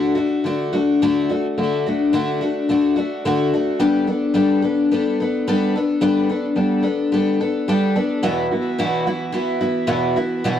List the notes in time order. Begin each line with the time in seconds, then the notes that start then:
Already playing: D3 A3 D4 F#4
0.15 A3 D4 F#4
0.44 D3 A3 D4 F#4
0.73 A3 D4 F#4
1.02 D3 A3 D4 F#4
1.29 A3 D4 F#4
1.57 D3 A3 D4 F#4
1.86 A3 D4 F#4
2.13 D3 A3 D4 F#4
2.41 A3 D4 F#4
2.69 D3 A3 D4 F#4
2.96 A3 D4 F#4
3.25 D3 A3 D4 F#4
3.54 A3 D4 F#4
3.80 G3 B3 D4 A4
4.07 B3 D4 A4
4.34 G3 B3 D4 A4
4.62 B3 D4 A4
4.91 G3 B3 D4 A4
5.20 B3 D4 A4
5.47 G3 B3 D4 A4
5.76 B3 D4 A4
6.01 G3 B3 D4 A4
6.30 B3 D4 A4
6.56 G3 B3 D4 A4
6.83 B3 D4 A4
7.12 G3 B3 D4 A4
7.41 B3 D4 A4
7.68 G3 B3 D4 A4
7.96 B3 D4 A4
8.23 E2 B2 E3 B3 E4 F#4
8.51 E3 B3 E4 F#4
8.78 E2 B2 E3 B3 E4 F#4
9.07 E3 B3 E4 F#4
9.32 E3 B3 E4 F#4
9.61 E3 B3 E4 F#4
9.87 E2 B2 E3 B3 E4 F#4
10.16 E3 B3 E4 F#4
10.44 E2 B2 E3 B3 E4 F#4